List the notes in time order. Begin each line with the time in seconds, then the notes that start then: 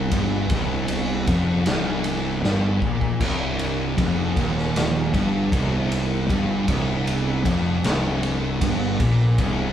Already playing: C2
0.11 G1 G2, kick, ride
0.50 C1 C2, kick, ride
0.88 ride
1.27 F1 F2, kick, ride
1.66 C1 C2, snare, ride
2.04 ride
2.44 G1 G2, snare
2.82 A#1 A#2, kick
3.01 kick
3.20 C1 C2, kick, splash, crash
3.59 ride
3.97 F1 F2, kick, ride
4.37 D#1 D#2, kick, ride
4.58 snare
4.76 snare, ride
5.13 G1 G2, kick, ride
5.52 C1 C2, kick, ride
5.92 ride
6.29 G1 G2, kick, ride
6.67 C1 C2, kick, ride
7.07 ride
7.45 F1 F2, kick, ride
7.84 C1 C2, snare, ride
8.23 ride
8.61 G1 G2, kick, ride
8.99 A#1 A#2, kick, ride
9.38 C1 C2, kick, ride